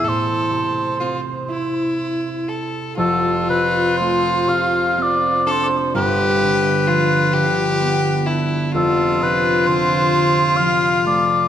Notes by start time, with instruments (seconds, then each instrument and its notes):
0.03 harp A2, fiddle A4
0.08 oboe C5
0.50 harp C3
1.00 harp C4, fiddle F4
1.48 harp E4, fiddle E4
2.49 fiddle A4
2.96 harp F1 F2, fiddle F4, oboe A4
3.48 harp C3, oboe B4
3.98 harp A3, oboe C5
4.47 harp C3, oboe F5
4.98 harp C4
5.02 oboe D5
5.46 harp D4, fiddle A4
5.51 oboe C5
5.63 oboe C5 D5
5.79 oboe C5
5.94 harp G1 G2, fiddle G4, oboe B4
6.43 harp D3
6.87 harp F3, fiddle F4
7.33 harp D3, fiddle G4
7.81 harp B3
8.26 harp D4, fiddle E4
8.71 harp F1 F2, fiddle F4
8.76 oboe A4
9.20 harp C3, oboe B4
9.65 harp D3, oboe C5
10.13 harp C3
10.57 harp F3, oboe F5
11.05 harp A3, oboe D5